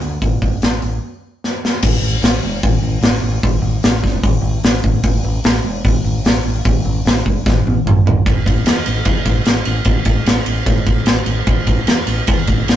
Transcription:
0.01 D2, open hi-hat
0.22 A1, kick, open hi-hat
0.42 A1, kick, open hi-hat
0.62 A1, snare, open hi-hat
0.82 A1, open hi-hat
1.44 snare
1.65 snare
1.82 A1, kick, crash
2.02 A1
2.22 A1, snare, open hi-hat
2.43 E1
2.63 A1, kick, open hi-hat
2.82 A1
3.01 A1, snare, open hi-hat
3.22 A1
3.43 A1, kick, open hi-hat
3.61 A1
3.83 A1, snare, open hi-hat
4.03 E1, kick, snare
4.23 A1, kick, open hi-hat
4.41 A1
4.63 A1, snare, open hi-hat
4.84 A1, kick
5.03 A1, kick, open hi-hat
5.24 A1
5.44 A1, snare, open hi-hat
5.64 E1
5.85 A1, kick, open hi-hat
6.04 A1
6.24 A1, snare, open hi-hat
6.44 A1
6.65 A1, kick, open hi-hat
6.85 A1
7.05 A1, snare, open hi-hat
7.26 E1, kick
7.46 A1, kick, snare
7.66 A1, high tom
7.84 A1, mid tom
8.06 A1, floor tom
8.25 A1, kick, ride
8.46 A1, kick, ride
8.64 E2, snare, ride
8.86 A1, ride
9.05 E2, kick, ride
9.25 A1, kick, ride
9.45 A1, snare, ride
9.65 A1, ride
9.85 A1, kick, ride
10.05 A1, kick, ride
10.26 A1, snare, ride
10.46 A1, ride
10.66 A2, kick, ride
10.86 A1, kick, ride
11.05 A1, snare, ride
11.26 A1, ride
11.47 A1, kick, ride
11.67 A1, kick, ride
11.87 E2, snare, ride
12.06 A1, ride
12.27 E2, kick, ride
12.47 A1, kick, ride
12.67 A1, snare, ride

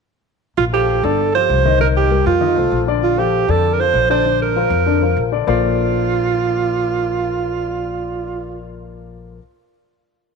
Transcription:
0.58 A#1 F4
0.73 F3 F4 G4 A4
1.03 G1 D3 D4 A4 D5
1.35 F3 F4 G4 C5
1.50 C2
1.65 D#3 D#4 D#5
1.80 D#3 D#4 A#4 D#5
1.97 G4
2.10 G3 G4 A#4
2.26 F2 F4
2.41 D#3 D#4 D#5
2.56 C2 A3 A4 C5
2.72 A#1
2.87 D3 D4 D5
3.04 F4
3.18 F3 F4 G4 A4
3.48 F2 D3 D4 A4 D5
3.73 A#4
3.79 F3 F4 A4 C5
3.94 A#1
4.10 D3 D4 C5 D5
4.25 D3 D4 D5
4.42 A#4
4.56 F3 F4 A#4
4.70 F2
4.86 D3 D4 D5
5.02 F3 F4 A#4
5.17 A#1
5.32 D3 D4 D5
5.47 A#1 A#3 F4 A4 A#4 C5 D5

